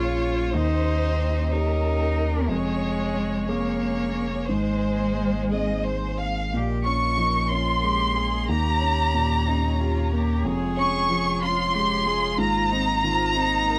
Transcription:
0.00 0.55 A#1 medium
0.00 0.50 A#2 medium
0.00 2.49 A#3 soft
0.00 0.51 C#4 soft
0.00 4.49 C#4 soft
0.00 0.56 F4 medium
0.00 0.51 G#4 soft
0.00 0.52 C#5 medium
0.00 0.54 G#5 soft
0.54 2.50 D#2 medium
0.54 2.45 D#2 medium
0.54 1.51 D#4 loud
0.54 2.49 G4 medium
0.54 1.51 C5 medium
1.51 2.45 C#4 soft
1.51 2.50 D#4 medium
1.51 2.46 G4 soft
1.51 2.50 A#4 medium
2.48 4.51 F1 medium
2.48 4.46 F2 medium
2.48 3.50 G#3 loud
2.48 4.49 G#3 medium
2.48 6.52 G#4 medium
2.48 3.47 C#5 medium
3.48 4.51 A#3 medium
3.48 4.46 C#4 soft
3.48 4.46 G#4 soft
3.48 4.47 C#5 medium
4.49 6.52 G#1 medium
4.49 6.48 G#2 soft
4.49 6.19 G#3 medium
4.49 6.52 A#3 medium
4.49 5.44 C5 medium
4.49 6.53 C5 soft
5.50 6.49 C4 soft
5.50 6.49 G#4 soft
5.50 5.82 D#5 medium
5.83 6.18 C5 medium
6.18 6.52 F5 medium
6.52 8.50 A#1 medium
6.52 8.46 A#2 soft
6.52 8.46 G#3 soft
6.52 10.42 A#3 soft
6.52 6.87 G4 medium
6.52 8.45 A#4 soft
6.84 7.38 C#4 soft
6.84 7.20 F4 medium
6.84 7.46 C#6 medium
7.17 7.70 F3 soft
7.17 7.52 D#4 medium
7.49 8.03 C#4 soft
7.49 7.85 F4 medium
7.49 8.49 C6 medium
7.83 8.36 G#3 soft
7.83 8.19 G4 medium
8.16 8.49 A#3 soft
8.16 8.53 G#4 medium
8.48 10.41 D#2 medium
8.48 10.46 D#2 medium
8.48 10.45 G4 medium
8.48 9.50 G4 medium
8.48 12.39 C#5 medium
8.48 10.41 A#5 medium
8.81 9.34 C#4 soft
9.14 9.67 A#2 soft
9.48 10.00 C#4 medium
9.48 9.82 D#4 medium
9.80 10.13 F4 medium
9.80 10.33 G4 soft
10.13 10.45 A#3 soft
10.13 10.48 G4 medium
10.44 12.40 F1 medium
10.44 12.35 F2 medium
10.44 12.39 G#3 medium
10.44 13.79 F4 medium
10.44 11.43 G#4 medium
10.77 11.29 C#4 medium
10.77 11.39 C#6 loud
11.10 11.62 F3 medium
11.42 11.94 C#4 medium
11.42 11.76 F4 medium
11.42 12.39 C6 medium
11.74 12.05 G#3 medium
11.74 12.08 G4 medium
12.06 12.39 G#3 medium
12.06 12.37 G#4 medium
12.38 13.79 G#1 medium
12.38 13.79 G#2 medium
12.38 13.79 A#3 medium
12.38 12.73 F4 medium
12.38 13.79 C5 medium
12.38 13.79 A#5 loud
12.71 13.23 C4 medium
12.71 13.05 D#4 medium
13.03 13.55 D#3 medium
13.03 13.37 F4 medium
13.35 13.79 C4 medium
13.35 13.79 D#4 medium
13.67 13.79 A#4 medium

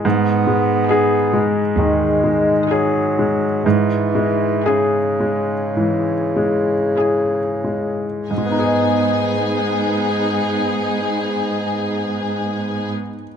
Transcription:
0.04 0.73 G#2 medium
0.04 1.74 G#2 medium
0.04 1.43 B3 medium
0.47 1.15 G#3 soft
0.88 1.55 D#4 soft
0.88 1.55 G#4 soft
0.88 1.60 G#4 soft
0.88 1.55 G#5 soft
1.34 2.05 G#3 soft
1.77 2.52 D#2 medium
1.77 2.52 D#3 soft
1.77 2.73 G#3 medium
2.24 2.99 G#3 soft
2.70 3.67 F#3 medium
2.70 3.41 D#4 soft
2.70 3.42 G#4 soft
2.70 3.46 G#4 soft
2.70 3.42 G#5 soft
3.19 3.65 G#3 soft
3.65 4.46 G#2 medium
3.65 5.72 G#2 medium
3.65 4.68 E3 medium
4.15 4.97 G#3 soft
4.64 8.13 C#3 medium
4.64 5.49 C#4 soft
4.64 5.49 E4 soft
4.64 5.48 G#4 soft
4.64 5.53 G#4 soft
4.64 5.48 G#5 soft
5.20 6.12 G#3 soft
5.76 6.74 G#2 soft
5.76 6.72 E3 soft
6.36 7.37 G#3 soft
6.97 8.00 C#4 soft
6.97 8.00 E4 soft
6.97 8.00 G#4 soft
6.97 8.04 G#4 soft
6.97 8.00 G#5 soft
7.64 8.30 G#3 soft
8.29 12.92 G#2 soft
8.29 12.93 G#2 soft
8.29 12.92 B3 soft
8.29 12.92 D#4 soft
8.29 12.92 G#4 soft
8.29 12.93 G#5 soft
8.38 13.00 G#3 soft
8.45 13.08 B3 soft
8.52 13.14 D#4 soft
8.59 13.21 G#4 soft
8.66 13.28 D#5 soft

